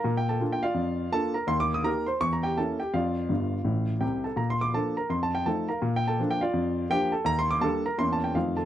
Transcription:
0.00 0.16 A#4 medium
0.00 0.16 F5 medium
0.00 0.18 A#5 medium
0.04 0.35 A#2 medium
0.17 0.29 G5 medium
0.29 0.52 A4 medium
0.29 0.53 A5 medium
0.40 0.60 A#3 soft
0.40 0.60 D4 soft
0.40 0.61 F4 soft
0.52 0.63 G5 medium
0.63 1.10 F4 medium
0.63 1.10 D5 medium
0.63 1.13 F5 medium
0.74 1.06 F2 medium
1.12 1.32 A#3 soft
1.12 1.33 D4 soft
1.12 1.33 F4 soft
1.12 1.35 A4 medium
1.12 1.35 A5 medium
1.34 1.48 A#4 medium
1.34 1.49 A#5 medium
1.47 1.79 D#2 medium
1.47 1.61 C6 loud
1.60 1.73 D6 medium
1.74 1.86 D#6 medium
1.84 2.04 A#3 soft
1.84 2.04 D#4 soft
1.84 2.04 G4 soft
1.84 2.06 A#4 medium
1.84 2.07 A#5 medium
2.06 2.21 C5 medium
2.06 2.21 C6 medium
2.20 2.52 E2 medium
2.20 2.33 C#6 loud
2.33 2.44 A#5 medium
2.43 2.57 G4 medium
2.43 2.57 G5 medium
2.57 2.77 A#3 soft
2.57 2.77 C#4 soft
2.57 2.78 E4 soft
2.57 2.79 A4 medium
2.57 2.80 A5 medium
2.80 2.94 G4 medium
2.80 2.94 G5 medium
2.94 3.24 F2 medium
2.94 3.99 F4 medium
2.94 3.99 D5 soft
2.94 4.02 F5 medium
3.29 3.56 G1 medium
3.29 3.57 G2 medium
3.64 3.92 A1 medium
3.64 3.92 A2 medium
4.00 4.28 C2 medium
4.00 4.28 C3 medium
4.00 4.23 G4 soft
4.00 4.24 G5 medium
4.24 4.38 A4 medium
4.24 4.38 A5 medium
4.36 4.68 A#2 medium
4.36 4.50 A#5 medium
4.50 4.62 C6 medium
4.61 4.74 D6 medium
4.74 4.94 F3 soft
4.74 4.94 A#3 soft
4.74 4.94 D4 soft
4.74 4.96 A4 medium
4.74 4.97 A5 medium
4.97 5.10 A#4 soft
4.97 5.11 A#5 medium
5.09 5.41 F2 medium
5.09 5.22 C6 medium
5.23 5.35 A5 medium
5.35 5.47 G5 medium
5.46 5.66 F3 soft
5.46 5.66 A3 soft
5.46 5.67 D#4 soft
5.46 5.68 A4 medium
5.46 5.69 A5 medium
5.69 5.93 A#4 medium
5.69 5.93 F5 medium
5.69 5.95 A#5 medium
5.82 6.13 A#2 medium
5.96 6.08 G5 medium
6.08 6.30 A4 soft
6.08 6.31 A5 medium
6.19 6.39 F3 soft
6.19 6.40 A#3 soft
6.19 6.40 D4 medium
6.31 6.41 G5 medium
6.41 6.88 F4 medium
6.41 6.88 D5 medium
6.41 6.91 F5 medium
6.53 6.85 F2 medium
6.90 7.10 F3 soft
6.90 7.10 A#3 soft
6.90 7.11 D4 soft
6.90 7.12 G4 medium
6.90 7.13 G5 loud
7.12 7.26 A4 medium
7.12 7.27 A5 medium
7.24 7.56 D#2 medium
7.24 7.39 A#5 loud
7.39 7.51 C6 loud
7.51 7.63 D6 medium
7.61 7.82 G3 soft
7.61 7.82 A#3 soft
7.61 7.82 D4 soft
7.61 7.84 A4 medium
7.61 7.85 A5 medium
7.86 7.99 A#4 medium
7.86 7.99 A#5 medium
7.98 8.29 E2 medium
7.98 8.18 E3 soft
7.98 8.19 A#3 soft
7.98 8.19 C#4 soft
7.98 8.11 C6 medium
8.13 8.24 A5 medium
8.24 8.36 G5 medium
8.35 8.65 F2 medium
8.35 8.55 D#3 soft
8.35 8.55 A3 soft
8.35 8.56 C4 soft
8.35 8.57 F4 medium
8.35 8.58 F5 medium
8.57 8.65 A4 soft
8.57 8.65 A5 medium

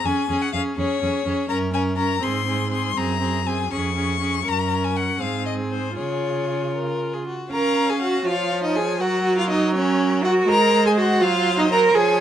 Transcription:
0.04 0.12 F2 soft
0.04 0.29 C#4 soft
0.04 0.28 G#4 soft
0.04 0.43 G#5 medium
0.29 0.37 F2 soft
0.29 0.53 C#4 soft
0.29 0.53 G#4 soft
0.41 0.52 F#5 medium
0.53 0.61 F2 soft
0.53 0.77 C#4 soft
0.53 0.77 G#4 soft
0.53 0.61 F5 medium
0.76 0.86 F2 soft
0.76 1.01 C#4 soft
0.76 1.01 G#4 soft
0.76 1.48 C#5 medium
1.02 1.10 F2 soft
1.02 1.25 C#4 soft
1.02 1.26 G#4 soft
1.25 1.34 F2 soft
1.25 1.49 C#4 soft
1.25 1.49 G#4 soft
1.49 2.14 F#2 medium
1.49 1.73 C#4 soft
1.49 1.73 A#4 soft
1.49 1.57 A#5 medium
1.73 1.97 C#4 soft
1.73 1.97 A#4 soft
1.73 1.82 G#5 medium
1.97 2.21 C#4 soft
1.97 2.22 A#4 soft
1.97 2.24 A#5 medium
2.22 2.88 G#2 medium
2.22 2.46 C4 soft
2.22 2.47 G#4 soft
2.22 2.71 C6 medium
2.46 2.70 C4 soft
2.46 2.72 G#4 soft
2.71 2.95 C4 soft
2.71 2.96 G#4 soft
2.71 2.99 C6 medium
2.96 3.63 F#2 soft
2.96 3.19 C4 soft
2.96 3.20 G#4 soft
2.96 3.48 A#5 medium
3.20 3.45 C4 soft
3.20 3.46 G#4 soft
3.45 3.70 C4 soft
3.45 3.71 G#4 soft
3.45 3.72 G#5 medium
3.70 4.38 F2 soft
3.70 3.95 C#4 soft
3.70 3.95 G#4 soft
3.70 4.49 C#6 medium
3.95 4.20 C#4 soft
3.95 4.20 G#4 soft
4.20 4.44 C#4 soft
4.20 4.45 G#4 soft
4.45 5.17 F#2 soft
4.45 5.21 C#4 soft
4.45 5.16 A#4 soft
4.45 4.86 A#5 medium
4.84 4.98 G#5 medium
4.96 5.24 F#5 medium
5.20 5.98 G#2 soft
5.20 5.95 C4 soft
5.20 5.95 G#4 soft
5.20 5.45 F5 medium
5.46 5.54 D#5 soft
5.72 5.97 C5 soft
5.96 7.31 C#3 soft
5.96 7.28 F4 soft
5.96 6.68 G#4 soft
5.96 6.74 C#5 soft
6.75 7.15 A#4 soft
7.14 7.26 G#4 soft
7.27 7.52 F#4 soft
7.51 8.22 C#4 soft
7.51 7.91 A#4 medium
7.51 8.22 F5 soft
7.51 7.91 A#5 medium
7.89 8.01 G#4 soft
7.89 8.01 G#5 soft
8.02 8.28 F#4 medium
8.02 8.26 F#5 medium
8.26 9.02 F3 medium
8.26 8.63 F4 medium
8.26 9.02 C#5 soft
8.26 8.63 F5 medium
8.63 8.77 D#4 medium
8.63 8.77 D#5 medium
8.75 9.00 G#4 medium
8.75 9.02 G#5 medium
9.00 10.47 F#3 medium
9.00 9.37 F#4 medium
9.00 9.75 A#4 soft
9.00 9.37 F#5 medium
9.38 9.50 F4 medium
9.38 9.50 F5 medium
9.50 9.74 D#4 medium
9.50 9.74 D#5 medium
9.74 10.25 C#4 medium
9.74 10.50 A#4 medium
9.74 10.23 C#5 medium
10.24 10.50 F#4 medium
10.24 10.32 F#5 medium
10.48 11.23 G#3 medium
10.48 10.86 A#4 medium
10.48 11.20 C5 medium
10.48 10.85 A#5 medium
10.85 10.98 G#4 medium
10.85 10.91 G#5 medium
10.97 11.22 F#4 medium
10.97 11.25 F#5 medium
11.21 11.94 F#3 medium
11.21 11.57 F4 medium
11.21 11.96 C5 medium
11.21 11.61 F5 medium
11.58 11.63 D#4 medium
11.58 11.71 D#5 medium
11.70 11.96 A#4 medium
11.70 11.80 A#5 medium
11.95 12.20 F3 medium
11.95 12.20 G#4 medium
11.95 12.20 C#5 medium
11.95 12.20 G#5 medium

